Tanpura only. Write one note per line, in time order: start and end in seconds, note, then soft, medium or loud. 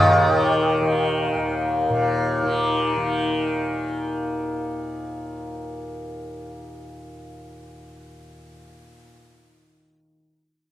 0.00 1.35 D#2 medium
0.00 1.89 A#2 medium
0.00 0.28 D#3 medium
0.28 0.82 D#3 medium
0.82 2.42 D#3 medium
1.35 8.50 D#2 medium
1.89 9.04 A#2 medium
2.42 2.97 D#3 medium
2.97 10.12 D#3 medium